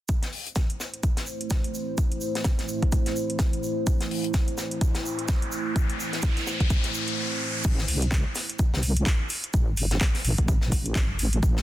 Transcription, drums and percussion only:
0.09 kick loud
0.09 closed hi-hat medium
0.09 shaker medium
0.22 snare soft
0.22 closed hi-hat medium
0.33 open hi-hat medium
0.47 closed hi-hat soft
0.56 kick loud
0.56 snare loud
0.56 closed hi-hat medium
0.56 shaker medium
0.70 closed hi-hat medium
0.80 snare soft
0.80 shaker medium
0.94 closed hi-hat soft
1.03 kick loud
1.03 closed hi-hat medium
1.03 shaker medium
1.17 snare medium
1.17 closed hi-hat medium
1.26 shaker medium
1.41 closed hi-hat soft
1.50 kick loud
1.50 snare loud
1.50 closed hi-hat medium
1.50 shaker medium
1.64 closed hi-hat medium
1.74 shaker medium
1.98 kick loud
1.98 closed hi-hat medium
1.98 shaker medium
2.12 closed hi-hat soft
2.21 shaker medium
2.35 snare soft
2.35 closed hi-hat soft
2.44 kick loud
2.44 snare loud
2.44 closed hi-hat medium
2.44 shaker medium
2.59 snare soft
2.59 closed hi-hat medium
2.68 shaker medium
2.82 kick medium
2.82 closed hi-hat soft
2.92 kick loud
2.92 closed hi-hat medium
2.92 shaker medium
3.06 snare soft
3.06 closed hi-hat soft
3.16 shaker medium
3.30 closed hi-hat soft
3.39 kick loud
3.39 snare loud
3.39 closed hi-hat medium
3.39 shaker medium
3.53 closed hi-hat medium
3.63 shaker medium
3.87 kick loud
3.87 closed hi-hat medium
3.87 shaker medium
4.01 snare soft
4.01 closed hi-hat soft
4.11 open hi-hat medium
4.24 closed hi-hat soft
4.34 kick loud
4.34 snare loud
4.34 closed hi-hat medium
4.34 shaker medium
4.48 closed hi-hat soft
4.58 snare soft
4.58 shaker medium
4.71 closed hi-hat soft
4.81 kick loud
4.81 closed hi-hat medium
4.81 shaker medium
4.95 snare medium
4.95 closed hi-hat medium
5.06 shaker medium
5.19 closed hi-hat soft
5.28 kick loud
5.28 snare loud
5.28 closed hi-hat medium
5.28 shaker medium
5.42 closed hi-hat soft
5.52 shaker medium
5.76 kick loud
5.76 closed hi-hat medium
5.76 shaker medium
5.90 closed hi-hat soft
6.00 shaker medium
6.13 snare soft
6.13 closed hi-hat soft
6.22 kick loud
6.22 snare loud
6.22 closed hi-hat medium
6.22 shaker medium
6.37 snare soft
6.37 closed hi-hat soft
6.47 snare soft
6.47 shaker medium
6.60 kick medium
6.60 closed hi-hat soft
6.70 kick loud
6.70 closed hi-hat medium
6.70 shaker medium
6.84 snare soft
6.84 closed hi-hat soft
6.94 shaker medium
7.08 closed hi-hat soft
7.64 kick loud
7.64 closed hi-hat medium
7.64 crash medium
7.64 shaker medium
7.78 snare soft
7.88 open hi-hat medium
7.88 open hi-hat loud
8.02 closed hi-hat medium
8.02 closed hi-hat soft
8.11 kick loud
8.11 snare loud
8.11 clap loud
8.11 closed hi-hat medium
8.11 shaker medium
8.35 snare medium
8.35 open hi-hat loud
8.35 shaker medium
8.49 closed hi-hat medium
8.59 kick loud
8.59 closed hi-hat medium
8.59 shaker medium
8.74 snare medium
8.83 open hi-hat loud
8.83 shaker medium
8.97 closed hi-hat medium
9.06 kick loud
9.06 snare loud
9.06 clap loud
9.06 closed hi-hat medium
9.06 shaker medium
9.29 open hi-hat loud
9.29 shaker medium
9.44 closed hi-hat medium
9.54 kick loud
9.54 closed hi-hat medium
9.54 shaker medium
9.77 open hi-hat loud
9.77 shaker medium
9.91 snare medium
9.91 closed hi-hat medium
10.01 kick loud
10.01 snare loud
10.01 clap loud
10.01 closed hi-hat medium
10.01 shaker medium
10.14 snare soft
10.14 open hi-hat medium
10.25 open hi-hat loud
10.25 shaker medium
10.38 kick medium
10.38 closed hi-hat medium
10.48 kick loud
10.48 closed hi-hat medium
10.48 shaker medium
10.61 snare soft
10.72 kick medium
10.72 open hi-hat loud
10.72 shaker medium
10.86 closed hi-hat medium
10.95 kick loud
10.95 snare loud
10.95 clap loud
10.95 closed hi-hat medium
10.95 shaker medium
11.19 open hi-hat loud
11.19 shaker medium
11.33 closed hi-hat medium
11.43 kick loud
11.43 closed hi-hat soft
11.43 shaker medium
11.57 snare soft

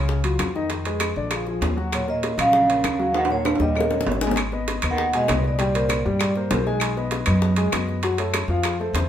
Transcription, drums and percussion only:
0.09 high bongo medium
0.24 high timbale medium
0.39 high bongo medium
0.39 low bongo medium
0.39 high timbale medium
0.39 claves medium
0.56 high bongo soft
0.70 high bongo medium
0.70 high timbale medium
0.85 high bongo soft
0.85 high timbale medium
1.00 high bongo medium
1.00 high timbale medium
1.00 claves medium
1.31 high bongo medium
1.31 high timbale medium
1.31 claves medium
1.47 high bongo soft
1.62 high bongo medium
1.62 low bongo medium
1.62 high timbale medium
1.62 low timbale medium
1.78 high bongo soft
1.93 high bongo medium
1.93 high timbale medium
1.93 claves medium
2.08 high bongo soft
2.23 high bongo medium
2.23 high timbale medium
2.38 high bongo soft
2.38 high timbale medium
2.38 claves medium
2.53 high bongo medium
2.70 high timbale medium
2.84 high bongo medium
2.84 low bongo medium
2.84 high timbale medium
2.84 claves medium
3.00 high bongo soft
3.14 high bongo medium
3.14 high timbale medium
3.25 high timbale medium
3.30 high bongo soft
3.45 high bongo medium
3.45 high timbale medium
3.45 claves medium
3.55 high timbale medium
3.60 high bongo medium
3.75 low timbale medium
3.75 claves medium
3.80 high bongo medium
3.91 low bongo medium
4.01 low bongo loud
4.07 low timbale medium
4.12 low bongo medium
4.21 low bongo medium
4.27 low timbale medium
4.31 low bongo medium
4.36 high bongo medium
4.36 high timbale medium
4.36 claves medium
4.52 high bongo soft
4.68 high bongo medium
4.68 high timbale medium
4.82 high bongo soft
4.82 high timbale medium
4.82 claves medium
4.98 high bongo medium
5.13 high timbale medium
5.28 high bongo medium
5.28 low bongo medium
5.28 high timbale medium
5.28 low timbale medium
5.28 claves medium
5.44 high bongo soft
5.59 high bongo medium
5.59 high timbale medium
5.74 high bongo soft
5.74 high timbale medium
5.89 high bongo medium
5.89 high timbale medium
5.89 claves medium
6.20 high bongo medium
6.20 high timbale medium
6.20 claves medium
6.35 high bongo soft
6.51 high bongo medium
6.51 low bongo medium
6.51 high timbale medium
6.51 low timbale medium
6.67 high bongo soft
6.80 high bongo medium
6.80 high timbale medium
6.80 claves medium
6.97 high bongo soft
7.11 high bongo medium
7.11 high timbale medium
7.26 high bongo soft
7.26 high timbale medium
7.26 claves medium
7.42 high bongo medium
7.56 high timbale medium
7.72 high bongo medium
7.72 low bongo medium
7.72 high timbale medium
7.72 claves medium
7.89 high bongo soft
8.03 high bongo medium
8.03 high timbale medium
8.18 high bongo soft
8.18 high timbale medium
8.34 high bongo medium
8.34 high timbale medium
8.34 claves medium
8.63 high bongo medium
8.63 high timbale medium
8.63 claves medium
8.81 high bongo soft
8.95 high bongo medium
8.95 low bongo medium
8.95 high timbale medium

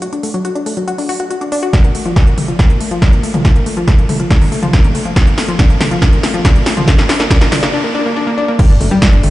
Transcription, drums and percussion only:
0.02 closed hi-hat medium
0.13 closed hi-hat soft
0.23 open hi-hat loud
0.34 closed hi-hat soft
0.45 closed hi-hat medium
0.56 closed hi-hat soft
0.66 open hi-hat loud
0.77 closed hi-hat soft
0.88 closed hi-hat medium
0.98 open hi-hat medium
1.09 open hi-hat loud
1.20 closed hi-hat soft
1.31 closed hi-hat medium
1.41 closed hi-hat soft
1.52 open hi-hat loud
1.63 closed hi-hat medium
1.73 kick loud
1.73 snare soft
1.73 closed hi-hat medium
1.84 closed hi-hat soft
1.95 open hi-hat loud
2.06 closed hi-hat soft
2.16 kick loud
2.16 snare soft
2.16 closed hi-hat medium
2.27 closed hi-hat soft
2.38 open hi-hat loud
2.38 mid tom medium
2.48 closed hi-hat soft
2.59 kick loud
2.59 snare medium
2.59 closed hi-hat medium
2.70 closed hi-hat soft
2.81 open hi-hat loud
2.91 closed hi-hat soft
3.02 kick loud
3.02 snare medium
3.02 closed hi-hat medium
3.13 closed hi-hat medium
3.23 open hi-hat loud
3.34 closed hi-hat soft
3.34 mid tom medium
3.45 kick loud
3.45 snare medium
3.45 closed hi-hat medium
3.56 closed hi-hat medium
3.66 open hi-hat loud
3.77 closed hi-hat soft
3.88 kick loud
3.88 snare medium
3.88 closed hi-hat medium
3.98 closed hi-hat soft
4.09 open hi-hat loud
4.09 mid tom medium
4.20 closed hi-hat medium
4.30 kick loud
4.30 snare medium
4.30 closed hi-hat medium
4.41 open hi-hat medium
4.41 mid tom medium
4.52 open hi-hat loud
4.63 closed hi-hat medium
4.63 mid tom medium
4.73 kick loud
4.73 snare medium
4.73 closed hi-hat medium
4.84 closed hi-hat medium
4.84 mid tom medium
4.95 open hi-hat loud
5.06 closed hi-hat medium
5.16 kick loud
5.16 snare medium
5.16 closed hi-hat medium
5.27 closed hi-hat medium
5.38 snare medium
5.38 open hi-hat loud
5.48 closed hi-hat soft
5.59 kick loud
5.59 snare medium
5.59 closed hi-hat medium
5.70 closed hi-hat medium
5.81 snare medium
5.81 open hi-hat loud
5.81 mid tom medium
5.91 closed hi-hat medium
6.02 kick loud
6.02 snare medium
6.02 closed hi-hat medium
6.13 closed hi-hat medium
6.23 snare medium
6.23 open hi-hat loud
6.34 closed hi-hat medium
6.45 kick loud
6.45 snare medium
6.45 closed hi-hat medium
6.56 closed hi-hat medium
6.66 snare medium
6.66 open hi-hat loud
6.77 closed hi-hat medium
6.77 mid tom medium
6.88 kick loud
6.88 snare medium
6.88 closed hi-hat medium
6.98 snare medium
6.98 closed hi-hat medium
7.09 snare medium
7.09 open hi-hat loud
7.20 snare medium
7.20 closed hi-hat medium
7.31 kick loud
7.31 snare medium
7.31 closed hi-hat medium
7.41 snare medium
7.41 closed hi-hat medium
7.52 snare loud
7.52 open hi-hat loud
7.52 mid tom medium
7.63 snare medium
7.63 closed hi-hat medium
8.59 kick loud
8.59 closed hi-hat medium
8.59 crash loud
8.70 closed hi-hat medium
8.81 open hi-hat loud
8.91 closed hi-hat soft
9.02 kick loud
9.02 snare loud
9.02 closed hi-hat medium
9.13 closed hi-hat medium
9.23 open hi-hat loud
9.23 mid tom medium

